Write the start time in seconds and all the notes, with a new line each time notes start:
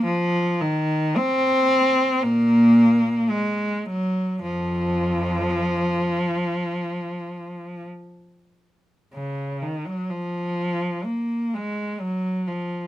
0.05 F3
0.61 D#3
1.18 C4
2.22 A#2 A#3
3.30 G#3
3.85 F#3
4.42 F2 F3
9.14 C#3
9.62 D#3
9.86 F#3
10.11 F3
11.04 A#3
11.54 G#3
12.01 F#3
12.48 F3